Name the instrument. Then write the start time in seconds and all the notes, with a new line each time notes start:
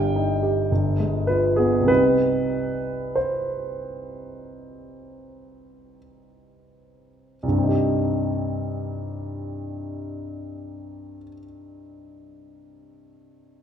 grand piano
Already playing: G1 G3 G5
0.16 D#4
0.43 G4
0.71 G1
1.00 G#3
1.27 F4 B4
1.56 B3 G#4
1.81 C2
1.86 G3 C4 D#4 B4
3.16 C5
7.43 C2
7.48 G2
7.53 G3
7.58 C4
7.64 D#4
7.69 G4